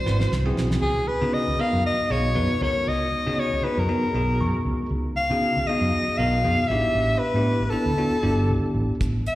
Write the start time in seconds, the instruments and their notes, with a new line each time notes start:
Already playing: soprano saxophone C5
0.06 fretless electric bass G#1, tine electric piano C4 E4 F#4 B4, snare
0.20 snare
0.32 fretless electric bass C2, snare
0.46 tine electric piano C4 E4 F#4 G#4
0.57 fretless electric bass B1, snare
0.71 snare
0.82 fretless electric bass C#2, soprano saxophone G#4
1.08 soprano saxophone B4
1.21 fretless electric bass C#3, tine electric piano B3 D#4 F#4 G#4
1.34 soprano saxophone D#5
1.48 fretless electric bass C#2
1.59 tine electric piano B3 D#4 F#4 A#4, soprano saxophone F5
1.73 fretless electric bass F#2
1.86 soprano saxophone D#5
1.99 muted fretless electric bass stroke
2.10 fretless electric bass B1, tine electric piano B3 D#4 F#4 G#4, soprano saxophone C#5
2.35 fretless electric bass F#2, tine electric piano B3 D#4 F#4 B4
2.50 muted fretless electric bass stroke
2.61 fretless electric bass C#2, tine electric piano B3 D#4 F#4 A#4, soprano saxophone C#5
2.87 fretless electric bass C#2, soprano saxophone D#5
3.26 fretless electric bass C#3, tine electric piano B3 D#4 F#4 G#4
3.40 soprano saxophone C#5
3.52 fretless electric bass C#2
3.63 tine electric piano B3 D#4 F#4 G#4, soprano saxophone B4, muted fretless electric bass stroke
3.77 fretless electric bass F#2, soprano saxophone A#4
3.89 tine electric piano B3 D#4 F#4 G#4
4.04 muted fretless electric bass stroke
4.14 fretless electric bass B1, tine electric piano B3 D#4 F#4 G#4
4.40 fretless electric bass F#2, tine electric piano C#6
4.54 muted fretless electric bass stroke
4.65 fretless electric bass C#2
4.91 fretless electric bass C#2
5.17 soprano saxophone F5
5.30 fretless electric bass C#3, tine electric piano B3 D#4 F#4 G#4
5.56 fretless electric bass C#2
5.67 tine electric piano B3 D#4 F#4 G#4, soprano saxophone D#5, muted fretless electric bass stroke
5.81 fretless electric bass F#2
6.08 muted fretless electric bass stroke
6.18 fretless electric bass B1, tine electric piano B3 D#4 F#4 A#4, soprano saxophone F5
6.44 fretless electric bass F#2, tine electric piano B3 D#4 F#4 G#4
6.59 muted fretless electric bass stroke
6.68 fretless electric bass A1, tine electric piano B3 D4 E4 G4, soprano saxophone E5
6.95 fretless electric bass A1
7.19 soprano saxophone B4
7.34 fretless electric bass A2, tine electric piano B3 D4 E4 G4
7.60 fretless electric bass A1
7.70 tine electric piano B3 D4 E4 A4, soprano saxophone A4, muted fretless electric bass stroke
7.86 fretless electric bass D2
7.98 tine electric piano B3 D4 E4 F#4
8.11 muted fretless electric bass stroke
8.23 fretless electric bass G1, tine electric piano B3 D4 E4 G4
8.50 fretless electric bass D2
8.63 muted fretless electric bass stroke
8.74 fretless electric bass A1
9.01 fretless electric bass A1, kick, closed hi-hat
9.26 soprano saxophone E5, closed hi-hat